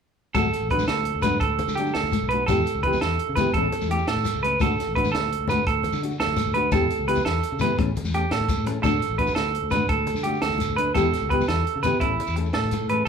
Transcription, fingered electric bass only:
0.35 0.50 D2 medium
0.61 0.83 A1 medium
0.89 1.10 D2 loud
1.15 1.37 D2 medium
1.41 1.63 D2 medium
1.68 1.89 D3 medium
1.95 2.16 D2 medium
2.22 2.43 B1 medium
2.48 2.63 E2 medium
2.75 2.96 C#2 medium
3.03 3.16 E2 loud
3.29 3.43 C#3 medium
3.54 3.69 A1 medium
3.82 4.03 E2 medium
4.08 4.22 A2 medium
4.35 4.56 C#2 medium
4.61 4.75 D2 medium
4.87 5.09 A1 medium
5.14 5.35 D2 loud
5.40 5.62 D2 medium
5.67 5.88 D2 medium
5.93 6.14 D3 medium
6.20 6.41 D2 medium
6.46 6.68 D2 medium
6.72 6.86 E2 medium
6.99 7.20 C#2 medium
7.26 7.40 E2 loud
7.52 7.66 C#3 medium
7.79 7.93 A1 medium
8.04 8.26 E2 medium
8.31 8.45 A2 medium
8.57 8.79 A2 medium
8.84 8.98 D2 medium
9.09 9.31 A1 medium
9.36 9.58 D2 medium
9.63 9.84 D2 medium
9.90 10.11 D2 medium
10.15 10.37 D3 medium
10.42 10.64 D2 medium
10.69 10.91 D2 medium
10.96 11.10 E2 medium
11.22 11.44 C#2 medium
11.49 11.63 E2 medium
11.76 11.90 C#3 medium
12.01 12.16 A1 medium
12.28 12.50 E2 medium
12.55 12.70 A2 medium
12.81 13.03 A2 medium

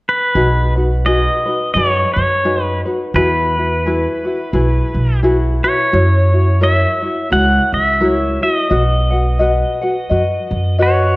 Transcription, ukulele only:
0.35 0.76 D#4 medium
0.35 0.76 F#4 medium
0.35 0.76 G#4 medium
0.35 0.74 B4 medium
0.75 1.04 D#4 soft
0.75 1.06 F#4 medium
0.75 1.05 B4 soft
1.05 1.46 D#4 medium
1.05 1.46 F#4 medium
1.05 1.46 G#4 medium
1.05 1.44 B4 medium
1.46 1.75 D#4 soft
1.46 1.75 F#4 soft
1.46 1.75 B4 soft
1.76 2.44 D#4 medium
1.76 2.45 F#4 medium
1.76 2.44 G#4 medium
1.76 2.45 B4 medium
2.45 2.85 D#4 medium
2.45 2.85 F#4 medium
2.45 2.85 G#4 medium
2.45 2.84 B4 medium
2.85 3.15 D#4 soft
2.85 3.15 F#4 soft
2.85 3.14 B4 medium
3.14 3.55 E4 medium
3.14 3.55 F#4 medium
3.14 3.55 G#4 medium
3.14 3.55 B4 medium
3.56 3.85 E4 soft
3.56 3.85 F#4 soft
3.56 3.84 B4 soft
3.86 4.25 E4 medium
3.86 4.23 F#4 medium
3.86 4.24 G#4 medium
3.86 4.23 B4 medium
4.24 4.52 E4 soft
4.24 4.53 F#4 soft
4.24 4.53 B4 medium
4.53 5.23 E4 medium
4.53 5.24 F#4 medium
4.53 5.22 G#4 medium
4.53 5.23 B4 medium
5.23 5.64 E4 medium
5.23 5.63 F#4 medium
5.23 5.63 G#4 medium
5.23 5.63 B4 loud
5.64 5.92 E4 soft
5.64 5.91 F#4 soft
5.64 5.91 B4 soft
5.92 6.32 E4 medium
5.92 6.33 F#4 medium
5.92 6.32 A#4 medium
5.92 6.31 C#5 medium
6.32 6.60 E4 soft
6.32 6.60 F#4 soft
6.32 6.60 C#5 soft
6.61 7.01 E4 medium
6.61 7.02 F#4 medium
6.61 7.02 A#4 medium
6.61 7.01 C#5 medium
7.02 7.30 E4 soft
7.02 7.30 F#4 soft
7.02 7.30 C#5 medium
7.30 8.00 E4 medium
7.30 8.01 F#4 medium
7.30 7.99 A#4 medium
7.30 8.00 C#5 medium
8.00 8.41 E4 medium
8.00 8.42 F#4 medium
8.00 8.41 A#4 medium
8.00 8.40 C#5 medium
8.41 8.71 E4 soft
8.41 8.69 F#4 soft
8.41 8.69 C#5 soft
8.70 9.11 F#4 medium
8.70 9.10 B4 medium
8.70 9.11 D#5 medium
8.70 9.09 F#5 medium
9.10 9.38 F#4 soft
9.10 9.39 B4 soft
9.10 9.39 F#5 medium
9.39 9.80 F#4 medium
9.39 9.81 B4 medium
9.39 9.80 D#5 medium
9.39 9.80 F#5 medium
9.81 10.10 F#4 soft
9.81 10.10 B4 medium
9.81 10.10 F#5 medium
10.09 10.79 F#4 medium
10.09 10.79 B4 medium
10.09 10.78 D#5 medium
10.09 10.80 F#5 medium
10.78 11.16 F#4 medium
10.78 11.16 B4 medium
10.78 11.16 D#5 medium
10.78 11.16 F#5 medium

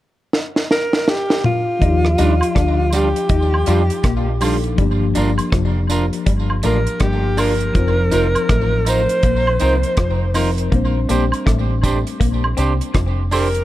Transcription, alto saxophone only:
0.71 1.10 A#4 medium
1.09 1.45 G4 loud
1.46 2.96 F4 medium
2.94 4.42 G4 medium
6.66 7.03 A#4 medium
7.02 7.41 G4 medium
7.39 8.90 A#4 medium
8.89 10.36 C5 loud
13.33 13.64 A#4 medium

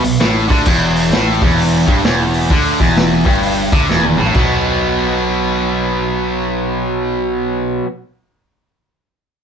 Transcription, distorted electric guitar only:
0.04 0.18 B2 medium
0.20 0.48 A2 loud
0.48 0.66 D3 loud
0.66 1.12 E2 loud
1.13 1.42 A2 loud
1.43 1.87 E2 loud
1.88 2.04 G2 loud
2.05 2.50 E2 medium
2.51 2.79 D3 loud
2.80 3.25 E2 loud
3.26 3.71 G2 loud
3.72 3.88 D3 loud
3.89 4.17 E2 loud
4.18 4.34 A2 loud
4.35 7.85 B2 loud
4.35 7.87 F#3 loud
4.35 7.89 B3 loud

